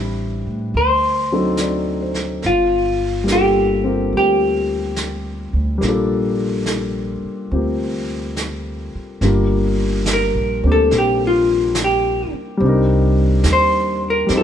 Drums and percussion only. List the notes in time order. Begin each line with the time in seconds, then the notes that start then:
0.73 brush sweep
1.57 snare, hi-hat pedal
2.14 snare
2.42 brush sweep, snare
3.28 snare, hi-hat pedal
4.12 brush sweep
4.96 snare, hi-hat pedal
5.82 brush sweep, snare
6.66 snare, hi-hat pedal
7.51 brush sweep
8.37 snare, hi-hat pedal
9.21 brush sweep, snare
10.06 snare, hi-hat pedal
10.91 brush sweep, snare
11.75 snare, hi-hat pedal
12.59 brush sweep
13.44 snare, hi-hat pedal
14.29 brush sweep, snare